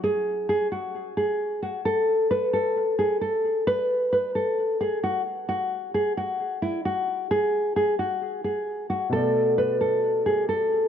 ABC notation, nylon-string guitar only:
X:1
M:4/4
L:1/8
Q:1/4=132
K:F#m
V:1 name="Nylon-string guitar"
G2 G F2 G2 F | A2 B A2 G A2 | B2 B A2 G F z | F2 G F2 E F2 |
G2 G F2 G2 F | A2 B A2 G A2 |]